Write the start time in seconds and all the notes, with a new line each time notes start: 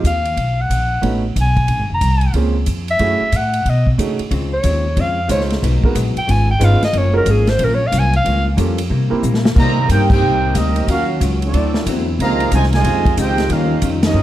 0.04 D#2 F5, kick, hi-hat pedal, ride
0.25 ride
0.37 B1, kick, ride
0.61 F#5
0.70 A#1, kick, hi-hat pedal, ride
1.02 A1 A3 B3 C#4 D#4 F#4, kick, ride
1.36 B1, kick, hi-hat pedal, ride
1.41 G#5
1.56 kick, ride
1.68 A#1, kick, ride
1.79 G#1
1.90 F1
1.94 A#5
2.01 C2, kick, hi-hat pedal, ride
2.21 ride
2.33 C#2 A#3 C4 C#4 F4 G#4, kick, ride
2.66 F2, kick, hi-hat pedal, ride
2.88 E5, ride
2.99 F#2 A3 C#4 E4 F#4 G#4, kick, ride
3.21 muted upright bass stroke
3.32 A2, kick, hi-hat pedal, ride
3.36 F#5
3.53 ride
3.65 B2 D#5, kick, ride
3.87 kick
3.98 C#3 A3 C#4 D#4 F#4 G#4, kick, hi-hat pedal, ride
4.19 muted upright bass stroke, ride
4.31 C#2 C#3 F3 G#3 C4, kick, ride
4.54 C#5
4.63 D#2 C#3 F3 G#3 C4, kick, hi-hat pedal, ride
4.96 F2 C#3 F3 G#3 C4, kick, ride
5.01 F5
5.28 C#2 C#3 F3 G#3 C4 C#4 D#4 F4 C5 C#5, kick, hi-hat pedal, ride
5.41 snare
5.50 snare, ride
5.62 B1 G#2 F#3 B3 D#4, kick, ride
5.83 G#3 B3 D#4 F#4 A#4, muted upright bass stroke, kick
5.95 A#1 G#2 F#3 B3 D#4, kick, hi-hat pedal, ride
6.16 G5, muted upright bass stroke, ride
6.27 G#1 C#3 G#3 B3 F4 G#5, kick, ride
6.51 G5
6.59 G1 C#3 G#3 B3 C#4 D#4 F4 B4, kick, hi-hat pedal, ride
6.64 F5
6.81 D#5, muted upright bass stroke, snare, ride
6.93 F#1 F#2 F3 A#3 C#4, kick, ride
6.98 C#5
7.13 G#3 C#4 F4 F#4 A#4
7.17 A#4
7.25 G#1 F#2 F3 A#3 C#4, kick, hi-hat pedal, ride
7.31 G#4
7.47 C5, snare, ride
7.59 A#1 F#2 F3 A#3 C#4, kick, ride
7.64 A#4
7.75 C#5
7.87 F5
7.92 C2 F#2 F3 A#3 C#4, kick, hi-hat pedal, ride
7.99 G#5
8.13 F5, ride
8.25 C#2 G2 F3 A#3 C#4, kick, ride
8.57 F2 G2 F3 A#3 C#4 F4 G4 A4, kick, hi-hat pedal, ride
8.78 ride
8.89 C3 G3 A#3 E4, kick
9.10 A#3 C4 E4 G4 A#4, muted upright bass stroke
9.23 A#2 C3 G3 A#3 E4, hi-hat pedal
9.34 snare
9.45 snare
9.55 C3 D#3 G3 A#3 C4 D#4 G4 C5 D#5 A#5, kick, crash
9.88 G2 C3 G3 A#3 D#4 G4 A#4 C5 G5, kick, hi-hat pedal, ride
10.10 A#3 D#4 G4 A#4 C5 G5, kick, crash
10.21 C2 C3 G3 A#3 D#4
10.54 D2 C3 G3 A#3 C4 D#4 G4 A#4 D#5, kick, hi-hat pedal, ride
10.76 ride
10.87 D#2 D#3 F#3 A#3 C#4 F4 F#4 A#4 F5, kick, ride
11.20 C#2 D#3 F#3 C#4 F4, kick, hi-hat pedal, ride
11.42 F#3 A3 C4 D4 F#4 A4 D5, ride
11.53 D2 D3 F#3 C4 E4, kick, ride
11.57 E4
11.74 snare
11.86 E2 D3 F#3 C4 E4, kick, hi-hat pedal, ride
12.19 C#2 C3 C#3 D#3 F3 A#3 C4 D#4 G#4 D#5 F5 A#5, kick, ride
12.40 ride
12.52 C2 C3 C#3 F3 G#3 C4 D#4 F4 C5 D#5 G#5, kick, hi-hat pedal, ride
12.63 snare
12.73 C3 F3 G#3 F4 C5 D#5 G#5, snare, ride
12.84 F2 C#3 F3 C4, kick, ride
12.88 D#4
13.05 kick, ride
13.17 C#2 C#3 F3 G#3 C4 D#4 F4 G4 C5 D#5 G5, kick, hi-hat pedal, ride
13.38 snare, ride
13.49 D#2 D#3 G3 A#3 C#4 F4 G4 A#4 F5, kick, ride
13.82 F2 D#3 G3 C#4 F4, kick, hi-hat pedal, ride
14.03 G3 A#3 C#4 D#4 G4 A#4 D#5, snare, ride
14.14 G2 D#3 G3 C#4 F4